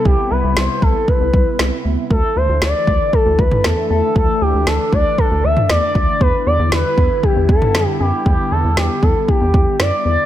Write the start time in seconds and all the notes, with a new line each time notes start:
Already playing: C3 G3 B3 E4
0.05 C2 G4, kick
0.31 C2 B4
0.44 C2
0.56 C2 C5, snare
0.82 C2 A4, kick
1.08 B4, kick
1.21 C2
1.34 C2, kick
1.59 C2, snare
1.85 D2
2.10 D2 D3 E3 A3 A4, kick
2.36 D2 C5
2.49 D2
2.62 D2 D5, snare
2.87 D2, kick
3.13 A4, kick
3.26 D2
3.39 D2 B4, kick
3.51 mid tom
3.64 E2 A4, snare
3.90 E2 A4
4.16 D2 D4 A4, kick
4.41 D2 G4
4.54 D2
4.67 D2 A4, snare
4.93 D2 D5, kick
5.18 A4, kick
5.31 D2
5.44 D2 E5
5.57 mid tom
5.69 E2 D5, snare
5.95 D2 D5, kick
6.21 E2 G3 B3 E4 B4, kick
6.46 E2 D5
6.59 E2
6.72 E2 B4, snare
6.98 E2, kick
7.23 G4, kick
7.36 E2
7.49 E2 A4, kick
7.62 mid tom
7.75 F#2, snare
8.00 F#2 G4
8.26 E2 G4, kick
8.51 E2 A4
8.64 E2
8.77 E2 G4, snare
9.03 E2 A4, kick
9.28 G4, kick
9.41 E2
9.54 E2, kick
9.79 F#2 D5, snare
10.05 E2 D5